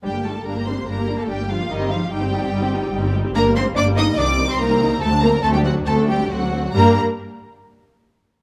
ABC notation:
X:1
M:4/4
L:1/16
Q:1/4=143
K:Gm
V:1 name="Violin section"
g2 a2 b2 c'2 b3 a g2 f2 | e2 f2 g8- g2 z2 | b2 c'2 d'2 e'2 d'3 c' b4 | a2 b2 a g ^f2 a2 g2 f4 |
b2 z12 z2 |]
V:2 name="Violin section"
G2 A2 B2 c2 B3 A G2 F2 | E2 F2 G8- G2 z2 | B2 c2 d2 e2 d3 c B4 | A2 B2 A G ^F2 A2 G2 F4 |
B2 z12 z2 |]
V:3 name="Viola section"
[G,D] [B,G] [G,D] [B,G] [G,D] [B,G] [G,D] [B,G] [G,D] [B,G] [G,D] [B,G] [G,D] [B,G] [G,D] [B,G] | [G,E] [CG] [G,E] [CG] [G,E] [CG] [G,E] [CG] [G,E] [CG] [G,E] [CG] [G,E] [CG] [G,E] [CG] | [B,D] [G,B,] [B,D] [G,B,] [B,D] [G,B,] [B,D] [G,B,] [E,E] [G,C] [E,E] [G,C] [E,E] [G,C] [E,E] [G,C] | [A,C] [^F,D] [A,C] [F,D] [A,C] [F,D] [A,C] [F,D] [A,C] [F,D] [A,C] [F,D] [A,C] [F,D] [A,C] [F,D] |
[G,D]2 z12 z2 |]
V:4 name="Cello section"
G,2 A,2 B,2 C2 B,3 A, G,2 F,2 | E,2 F,2 G,8- G,2 z2 | B,2 C2 D2 E2 D3 C B,4 | A,2 B,2 A, G, ^F,2 A,2 G,2 F,4 |
B,2 z12 z2 |]
V:5 name="Double bass section" clef=bass
G,,,4 G,,,4 G,,,4 G,,,4 | G,,,4 G,,,4 G,,,4 G,,,4 | G,,,4 G,,,4 C,,4 C,,4 | D,,4 D,,4 D,,4 D,,4 |
G,,2 z12 z2 |]